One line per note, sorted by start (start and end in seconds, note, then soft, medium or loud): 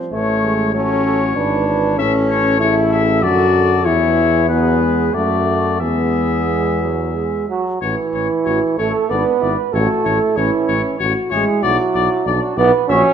0.00 0.14 F3 medium
0.12 1.32 A1 medium
0.12 0.42 E3 medium
0.12 0.70 A3 medium
0.12 0.70 C#5 medium
0.12 0.71 C#5 medium
0.43 0.76 G#3 medium
0.74 1.35 F#3 medium
0.74 1.35 C#4 medium
0.74 1.05 A4 medium
0.74 1.96 C#5 medium
1.06 1.20 A4 medium
1.36 2.00 G#1 medium
1.36 2.62 E3 medium
1.36 1.99 D4 medium
1.36 1.66 B4 medium
1.67 2.00 B4 medium
1.98 3.25 A1 medium
1.98 2.59 C#4 medium
1.98 3.22 A4 medium
1.98 2.12 E5 medium
2.29 2.60 C#5 medium
2.60 3.25 C#3 medium
2.60 3.22 E4 medium
2.60 2.75 C#5 medium
2.91 3.24 E5 medium
3.22 3.88 F#2 medium
3.22 3.86 D3 medium
3.22 3.87 F#4 medium
3.22 3.87 A4 medium
3.22 3.86 D5 medium
3.84 5.14 E2 medium
3.84 4.51 E3 medium
3.84 4.49 E4 medium
3.84 5.16 G#4 medium
3.84 4.48 C#5 medium
4.49 4.83 F#3 medium
4.49 5.13 B3 medium
4.49 5.15 B4 medium
4.81 5.16 G#3 medium
5.14 5.83 F#2 medium
5.14 5.81 A3 medium
5.14 5.80 A3 medium
5.14 5.83 F#4 medium
5.14 5.80 D5 medium
5.80 7.49 E2 medium
5.80 6.41 G#3 medium
5.80 7.45 B3 medium
5.80 7.49 G#4 medium
5.80 7.45 E5 medium
6.49 6.80 G#3 medium
6.82 7.16 F#3 medium
7.15 7.48 G#3 medium
7.48 7.79 F#3 medium
7.48 7.64 F#4 medium
7.81 7.95 A1 medium
7.81 8.79 E3 medium
7.81 8.76 E4 medium
7.81 7.95 C#5 medium
8.13 8.28 A1 soft
8.13 8.28 C#5 medium
8.45 8.60 A1 medium
8.45 8.60 F#4 medium
8.45 8.59 C#5 medium
8.78 8.92 A1 medium
8.78 9.11 A3 medium
8.78 8.92 E4 soft
8.78 9.11 A4 medium
8.78 8.92 C#5 soft
9.09 9.24 G#1 medium
9.09 9.55 B3 medium
9.09 9.40 D4 medium
9.09 9.74 B4 medium
9.09 9.24 D5 medium
9.41 9.56 G#1 medium
9.41 9.55 E4 medium
9.41 9.56 D5 soft
9.72 9.87 A1 medium
9.72 10.38 A3 medium
9.72 10.06 F#4 medium
9.72 10.38 A4 medium
9.72 9.88 C#5 medium
10.04 10.19 A1 medium
10.04 10.38 E4 medium
10.04 10.19 C#5 medium
10.36 10.51 A1 medium
10.36 11.00 E3 medium
10.36 10.99 C#4 medium
10.36 11.00 E4 medium
10.36 10.51 C#5 medium
10.68 10.82 A1 medium
10.68 10.82 C#5 medium
10.99 11.14 A1 medium
10.99 11.33 F#4 medium
10.99 11.14 C#5 medium
11.30 11.45 A1 medium
11.30 11.64 G#3 medium
11.30 12.27 E4 medium
11.30 11.65 G#4 medium
11.30 11.45 C#5 medium
11.63 11.77 B1 medium
11.63 12.57 F#3 medium
11.63 12.59 F#4 medium
11.63 11.77 D5 medium
11.94 12.09 B1 medium
11.94 12.08 D5 medium
12.25 12.40 B1 medium
12.25 12.57 D4 medium
12.25 12.40 D5 medium
12.57 12.71 B1 medium
12.57 12.72 B3 loud
12.57 12.71 E4 medium
12.57 12.88 B4 medium
12.57 12.71 D5 medium
12.89 13.03 A#1 medium
12.89 13.13 C#4 loud
12.89 13.13 F#4 medium
12.89 13.13 C#5 loud
12.89 13.03 E5 medium